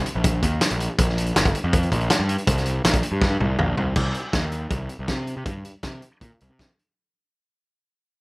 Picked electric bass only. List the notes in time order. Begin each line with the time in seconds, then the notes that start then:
0.15 A#1
0.43 D#2
0.71 A#1
0.99 A#1
1.36 G1
1.64 F2
1.92 A#1
2.20 G2
2.47 C2
2.84 A#1
3.12 G2
3.40 C2
3.59 A#1
3.77 C2
3.96 C2
4.33 D#2
4.71 C2
4.99 C2
5.09 C3
5.37 C3
5.46 G2
5.84 C3
6.21 A#2
6.42 C2
6.49 C3